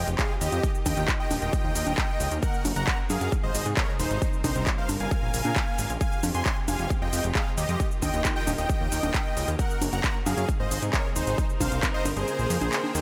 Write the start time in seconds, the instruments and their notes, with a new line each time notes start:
Already playing: string section C3 G#3 F4 G4
0.08 analog synth bass F1, closed hi-hat, shaker
0.19 supersaw synth G#4 F5, kick, clap, closed hi-hat, shaker
0.41 analog synth bass D#2, supersaw synth G4 D#5, open hi-hat, shaker
0.52 analog synth bass F2, closed hi-hat, shaker
0.63 string section D#3 A#3 F4, kick, closed hi-hat, shaker
0.75 shaker
0.86 analog synth bass D#2, supersaw synth D#5 G5, kick, open hi-hat, high conga, shaker
0.97 analog synth bass D#2, closed hi-hat, shaker
1.08 kick, clap, closed hi-hat, shaker
1.20 supersaw synth D#5 G5
1.31 analog synth bass D#1, open hi-hat, high conga, shaker
1.42 analog synth bass D#1, supersaw synth D#5 G5, closed hi-hat, shaker
1.53 kick, closed hi-hat, shaker
1.64 analog synth bass D#2
1.75 analog synth bass D#2, open hi-hat, shaker
1.87 analog synth bass D#1, closed hi-hat, high conga, shaker
1.98 kick, clap, closed hi-hat, shaker
2.20 analog synth bass C#2, open hi-hat, shaker
2.31 analog synth bass D#2, closed hi-hat, shaker
2.43 string section C#3 F#4 A#4, supersaw synth A#4 F#5, kick, closed hi-hat, shaker
2.54 shaker
2.65 analog synth bass F#1, open hi-hat, high conga, shaker
2.76 analog synth bass F#1, supersaw synth F#5 A#5, closed hi-hat, shaker
2.87 kick, clap, closed hi-hat, shaker
3.10 analog synth bass F#2, supersaw synth G#4 F5, open hi-hat, high conga, shaker
3.21 analog synth bass F#2, closed hi-hat, shaker
3.32 string section C3 G#3 D#4 G#4, kick, closed hi-hat, shaker
3.43 analog synth bass G#1, supersaw synth C5 D#5
3.55 analog synth bass G#1, open hi-hat, shaker
3.66 analog synth bass G#2, closed hi-hat, shaker
3.77 supersaw synth A#4 C#5, kick, clap, closed hi-hat, shaker
3.99 analog synth bass D#1, supersaw synth D#4 C5, open hi-hat, shaker
4.11 analog synth bass G#1, closed hi-hat, shaker
4.22 string section G3 A#4, kick, closed hi-hat, shaker
4.33 shaker
4.44 analog synth bass C2, supersaw synth D#4 C5, kick, open hi-hat, high conga, shaker
4.55 analog synth bass C2, closed hi-hat, shaker
4.67 kick, clap, closed hi-hat, shaker
4.78 supersaw synth C5 F5
4.89 analog synth bass G1, open hi-hat, high conga, shaker
5.00 analog synth bass G1, supersaw synth F5 G#5, closed hi-hat, shaker
5.11 string section C#3 A#3 F4, kick, closed hi-hat, shaker
5.23 analog synth bass A#1
5.34 analog synth bass A#1, open hi-hat, shaker
5.45 analog synth bass A#2, closed hi-hat, high conga, shaker
5.56 kick, clap, closed hi-hat, shaker
5.78 analog synth bass G#1, open hi-hat, shaker
5.90 analog synth bass A#1, closed hi-hat, shaker
6.01 string section C3 G#3 G4, supersaw synth F5 G#5, kick, closed hi-hat, shaker
6.12 shaker
6.23 analog synth bass F2, open hi-hat, high conga, shaker
6.34 analog synth bass F2, supersaw synth G#5 C6, closed hi-hat, shaker
6.46 kick, clap, closed hi-hat, shaker
6.68 analog synth bass F1, supersaw synth F5 G#5, open hi-hat, high conga, shaker
6.79 analog synth bass F1, closed hi-hat, shaker
6.90 kick, closed hi-hat, shaker
7.02 analog synth bass F2, supersaw synth D#5 G5
7.13 analog synth bass F2, open hi-hat, shaker
7.24 analog synth bass F1, closed hi-hat, shaker
7.35 supersaw synth G#4 F5, kick, clap, closed hi-hat, shaker
7.57 analog synth bass D#2, supersaw synth G4 D#5, open hi-hat, shaker
7.69 analog synth bass F2, closed hi-hat, shaker
7.80 string section D#3 A#3 G4, kick, closed hi-hat, shaker
7.91 shaker
8.02 analog synth bass D#2, supersaw synth D#5 G5, kick, open hi-hat, high conga, shaker
8.14 analog synth bass D#2, closed hi-hat, shaker
8.25 kick, clap, closed hi-hat, shaker
8.36 supersaw synth D#5 G5
8.47 analog synth bass D#1, open hi-hat, high conga, shaker
8.58 analog synth bass D#1, supersaw synth D#5 G5, closed hi-hat, shaker
8.69 kick, closed hi-hat, shaker
8.81 analog synth bass D#2
8.92 analog synth bass D#2, open hi-hat, shaker
9.03 analog synth bass D#1, closed hi-hat, high conga, shaker
9.14 kick, clap, closed hi-hat, shaker
9.37 analog synth bass C#2, open hi-hat, shaker
9.48 analog synth bass D#2, closed hi-hat, shaker
9.59 string section C#3 F#4 A#4, supersaw synth A#4 F#5, kick, closed hi-hat, shaker
9.70 shaker
9.81 analog synth bass F#1, open hi-hat, high conga, shaker
9.93 analog synth bass F#1, supersaw synth F#5 A#5, closed hi-hat, shaker
10.04 kick, clap, closed hi-hat, shaker
10.26 analog synth bass F#2, supersaw synth G#4 F5, open hi-hat, high conga, shaker
10.37 analog synth bass F#2, closed hi-hat, shaker
10.49 string section C3 G#3 D#4 G#4, kick, closed hi-hat, shaker
10.60 analog synth bass G#1, supersaw synth C5 D#5
10.71 analog synth bass G#1, open hi-hat, shaker
10.82 analog synth bass G#2, closed hi-hat, shaker
10.93 supersaw synth A#4 C#5, kick, clap, closed hi-hat, shaker
11.16 analog synth bass D#1, supersaw synth D#4 C5, open hi-hat, shaker
11.27 analog synth bass G#1, closed hi-hat, shaker
11.38 string section G3 A#4, kick, closed hi-hat, shaker
11.50 shaker
11.60 analog synth bass C2, supersaw synth C5 F5, kick, open hi-hat, high conga, shaker
11.72 analog synth bass C2, closed hi-hat, shaker
11.83 kick, clap, closed hi-hat, shaker
11.94 supersaw synth C5 D#5
12.05 analog synth bass G1, open hi-hat, high conga, shaker
12.16 analog synth bass G1, supersaw synth G#4 C5, closed hi-hat, shaker
12.28 string section C#3 A#3 F4, closed hi-hat, shaker
12.39 analog synth bass A#1, shaker
12.50 analog synth bass F2, open hi-hat, shaker
12.61 analog synth bass A#1, closed hi-hat, high conga, shaker
12.73 string section D#3 A#4 G5, clap, closed hi-hat, shaker
12.84 high conga
12.95 analog synth bass D#2, open hi-hat, shaker